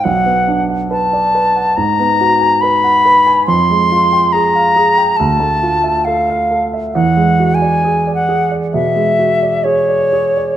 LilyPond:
<<
  \new Staff \with { instrumentName = "Flute" } { \time 4/4 \key e \mixolydian \tempo 4 = 69 fis''8 r8 a''4 ais''4 b''4 | c'''4 bes''4 a''4 f''4 | \tuplet 3/2 { fis''4 gis''8~ gis''8 fis''8 r8 } e''4 cis''4 | }
  \new Staff \with { instrumentName = "Grand piano" } { \time 4/4 \key e \mixolydian b,,16 b16 d'16 fis''16 b'16 d''16 b'16 fis''16 gis,16 b16 fis'16 gis''16 b'16 fis''16 b'16 gis''16 | f,16 aes16 f'16 g''16 aes'16 f''16 aes'16 g''16 d,16 a16 f'16 e''16 a'16 f''16 a'16 e''16 | e,16 gis16 fis'16 d''16 gis'16 d''16 gis'16 d''16 b,16 gis16 fis'16 d''16 gis'16 d''16 gis'16 d''16 | }
>>